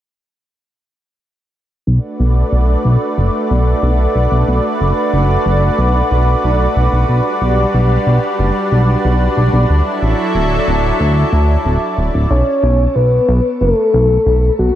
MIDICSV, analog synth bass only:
0, 0, Header, 1, 2, 480
1, 0, Start_track
1, 0, Key_signature, 2, "minor"
1, 0, Tempo, 652174
1, 1376, Time_signature, 4, 2, 24, 8
1, 10858, End_track
2, 0, Start_track
2, 0, Title_t, "Analog synth bass"
2, 0, Program_c, 0, 38
2, 1376, Note_on_c, 0, 35, 88
2, 1464, Note_off_c, 0, 35, 0
2, 1616, Note_on_c, 0, 35, 86
2, 1792, Note_off_c, 0, 35, 0
2, 1856, Note_on_c, 0, 35, 80
2, 2032, Note_off_c, 0, 35, 0
2, 2096, Note_on_c, 0, 35, 96
2, 2184, Note_off_c, 0, 35, 0
2, 2337, Note_on_c, 0, 30, 85
2, 2424, Note_off_c, 0, 30, 0
2, 2577, Note_on_c, 0, 35, 88
2, 2753, Note_off_c, 0, 35, 0
2, 2816, Note_on_c, 0, 35, 103
2, 2992, Note_off_c, 0, 35, 0
2, 3056, Note_on_c, 0, 35, 79
2, 3144, Note_off_c, 0, 35, 0
2, 3177, Note_on_c, 0, 35, 92
2, 3264, Note_off_c, 0, 35, 0
2, 3297, Note_on_c, 0, 35, 91
2, 3384, Note_off_c, 0, 35, 0
2, 3536, Note_on_c, 0, 30, 88
2, 3624, Note_off_c, 0, 30, 0
2, 3776, Note_on_c, 0, 30, 88
2, 3952, Note_off_c, 0, 30, 0
2, 4016, Note_on_c, 0, 30, 104
2, 4192, Note_off_c, 0, 30, 0
2, 4256, Note_on_c, 0, 35, 94
2, 4432, Note_off_c, 0, 35, 0
2, 4496, Note_on_c, 0, 35, 100
2, 4672, Note_off_c, 0, 35, 0
2, 4736, Note_on_c, 0, 35, 97
2, 4912, Note_off_c, 0, 35, 0
2, 4976, Note_on_c, 0, 35, 82
2, 5064, Note_off_c, 0, 35, 0
2, 5095, Note_on_c, 0, 35, 106
2, 5184, Note_off_c, 0, 35, 0
2, 5216, Note_on_c, 0, 35, 94
2, 5304, Note_off_c, 0, 35, 0
2, 5456, Note_on_c, 0, 35, 84
2, 5632, Note_off_c, 0, 35, 0
2, 5696, Note_on_c, 0, 35, 81
2, 5872, Note_off_c, 0, 35, 0
2, 5936, Note_on_c, 0, 35, 96
2, 6024, Note_off_c, 0, 35, 0
2, 6176, Note_on_c, 0, 30, 85
2, 6264, Note_off_c, 0, 30, 0
2, 6416, Note_on_c, 0, 35, 87
2, 6592, Note_off_c, 0, 35, 0
2, 6656, Note_on_c, 0, 35, 100
2, 6832, Note_off_c, 0, 35, 0
2, 6895, Note_on_c, 0, 35, 78
2, 6983, Note_off_c, 0, 35, 0
2, 7015, Note_on_c, 0, 35, 91
2, 7104, Note_off_c, 0, 35, 0
2, 7135, Note_on_c, 0, 38, 91
2, 7224, Note_off_c, 0, 38, 0
2, 7376, Note_on_c, 0, 33, 86
2, 7464, Note_off_c, 0, 33, 0
2, 7616, Note_on_c, 0, 26, 90
2, 7792, Note_off_c, 0, 26, 0
2, 7856, Note_on_c, 0, 26, 106
2, 8032, Note_off_c, 0, 26, 0
2, 8096, Note_on_c, 0, 38, 87
2, 8272, Note_off_c, 0, 38, 0
2, 8335, Note_on_c, 0, 38, 92
2, 8512, Note_off_c, 0, 38, 0
2, 8575, Note_on_c, 0, 26, 93
2, 8663, Note_off_c, 0, 26, 0
2, 8816, Note_on_c, 0, 26, 77
2, 8904, Note_off_c, 0, 26, 0
2, 8936, Note_on_c, 0, 26, 97
2, 9024, Note_off_c, 0, 26, 0
2, 9056, Note_on_c, 0, 35, 92
2, 9144, Note_off_c, 0, 35, 0
2, 9296, Note_on_c, 0, 35, 88
2, 9472, Note_off_c, 0, 35, 0
2, 9536, Note_on_c, 0, 35, 80
2, 9712, Note_off_c, 0, 35, 0
2, 9777, Note_on_c, 0, 35, 96
2, 9865, Note_off_c, 0, 35, 0
2, 10017, Note_on_c, 0, 30, 86
2, 10104, Note_off_c, 0, 30, 0
2, 10257, Note_on_c, 0, 35, 91
2, 10433, Note_off_c, 0, 35, 0
2, 10497, Note_on_c, 0, 35, 99
2, 10672, Note_off_c, 0, 35, 0
2, 10737, Note_on_c, 0, 35, 77
2, 10825, Note_off_c, 0, 35, 0
2, 10858, End_track
0, 0, End_of_file